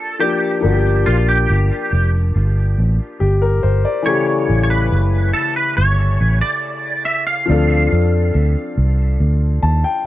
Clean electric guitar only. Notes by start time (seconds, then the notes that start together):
Already playing: A4
0.20 G4
1.06 F4
1.29 G4
4.06 C#5
4.63 C#5
4.70 B4
5.33 A4
5.56 B4
5.77 C#5
6.41 D5
7.05 E5
7.27 F5